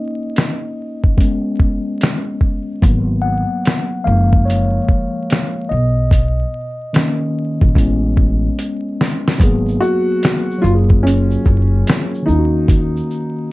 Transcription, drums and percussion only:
0.36 snare, closed hi-hat
1.04 kick
1.18 kick, closed hi-hat
1.60 kick
2.01 snare, closed hi-hat
2.41 kick
2.82 kick, closed hi-hat
3.65 snare, closed hi-hat
4.33 kick
4.50 closed hi-hat
4.89 kick
5.30 snare, closed hi-hat
6.11 kick, closed hi-hat
6.94 snare, closed hi-hat
7.61 kick
7.75 kick, closed hi-hat
8.17 kick
8.59 closed hi-hat
9.01 snare
9.28 snare
9.40 kick, closed hi-hat, shaker
9.68 shaker
9.82 shaker
10.23 snare, closed hi-hat, shaker
10.51 shaker
10.65 shaker
10.90 kick
11.07 closed hi-hat, shaker
11.31 shaker
11.45 kick, shaker
11.87 snare, closed hi-hat, shaker
12.14 shaker
12.28 shaker
12.68 kick, closed hi-hat, shaker
12.97 shaker
13.11 shaker

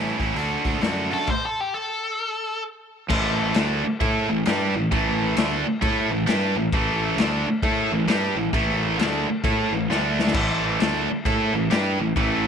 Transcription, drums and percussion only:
0.20 kick, open hi-hat
0.36 open hi-hat
0.65 kick, open hi-hat
0.81 snare, open hi-hat
1.11 open hi-hat
1.27 kick, crash
3.10 kick, crash
3.54 snare, crash
4.01 kick, crash
4.46 snare, crash
4.92 kick, crash
5.37 snare, crash
5.82 kick, crash
6.27 snare, crash
6.72 kick, crash
7.18 snare, crash
7.63 kick, crash
8.08 snare, crash
8.53 kick, crash
8.99 snare, crash
9.44 kick, crash
9.91 snare
10.19 snare
10.27 snare
10.34 kick, crash
10.80 snare, crash
11.25 kick, crash
11.71 snare, crash
12.16 kick, crash

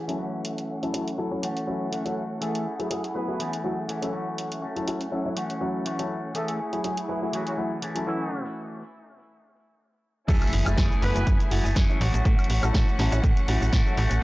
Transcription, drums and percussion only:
0.09 closed hi-hat
0.45 closed hi-hat
0.58 closed hi-hat
0.83 closed hi-hat
0.94 closed hi-hat
1.08 closed hi-hat
1.43 closed hi-hat
1.57 closed hi-hat
1.93 closed hi-hat
2.06 closed hi-hat
2.42 closed hi-hat
2.55 closed hi-hat
2.80 closed hi-hat
2.91 closed hi-hat
3.04 closed hi-hat
3.40 closed hi-hat
3.53 closed hi-hat
3.89 closed hi-hat
4.02 closed hi-hat
4.38 closed hi-hat
4.52 closed hi-hat
4.76 closed hi-hat
4.88 closed hi-hat
5.01 closed hi-hat
5.37 closed hi-hat
5.50 closed hi-hat
5.86 closed hi-hat
5.99 closed hi-hat
6.35 closed hi-hat
6.48 closed hi-hat
6.73 closed hi-hat
6.84 closed hi-hat
6.97 closed hi-hat
7.33 closed hi-hat
7.47 closed hi-hat
7.82 closed hi-hat
7.96 closed hi-hat
10.28 kick, closed hi-hat, crash, shaker
10.42 closed hi-hat, high woodblock, shaker
10.47 closed hi-hat
10.53 open hi-hat
10.66 closed hi-hat, high woodblock, shaker
10.78 kick, snare, closed hi-hat, shaker
10.92 shaker
11.02 open hi-hat
11.16 closed hi-hat, shaker
11.27 kick, closed hi-hat, shaker
11.40 closed hi-hat, shaker
11.51 open hi-hat
11.66 shaker
11.76 kick, snare, closed hi-hat, shaker
11.90 shaker
12.01 open hi-hat
12.14 closed hi-hat, shaker
12.25 kick, closed hi-hat, shaker
12.39 closed hi-hat, high woodblock, shaker
12.44 closed hi-hat
12.50 open hi-hat
12.63 closed hi-hat, high woodblock, shaker
12.74 kick, snare, closed hi-hat, shaker
12.88 shaker
12.99 snare, open hi-hat
13.12 closed hi-hat, shaker
13.24 kick, closed hi-hat, shaker
13.37 closed hi-hat, shaker
13.48 open hi-hat
13.62 shaker
13.73 kick, snare, closed hi-hat, shaker
13.87 shaker
13.97 open hi-hat
14.11 closed hi-hat, shaker

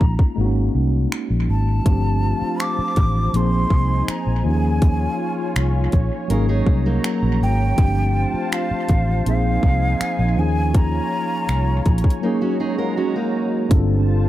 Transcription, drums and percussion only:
0.01 kick
0.19 kick
1.12 finger snap
1.86 kick, closed hi-hat
2.60 finger snap, closed hi-hat
2.96 kick, closed hi-hat
3.34 closed hi-hat
3.70 kick
4.08 finger snap, closed hi-hat
4.82 kick, closed hi-hat
5.56 finger snap, closed hi-hat
5.92 kick, closed hi-hat
6.30 closed hi-hat
6.67 kick
7.04 finger snap, closed hi-hat
7.78 kick, closed hi-hat
8.52 finger snap, closed hi-hat
8.89 kick, closed hi-hat
9.26 closed hi-hat
9.63 kick
10.01 finger snap, closed hi-hat
10.74 kick, closed hi-hat
11.49 finger snap, closed hi-hat
11.86 kick, closed hi-hat
11.98 closed hi-hat
12.04 kick
12.10 closed hi-hat
13.71 kick, closed hi-hat

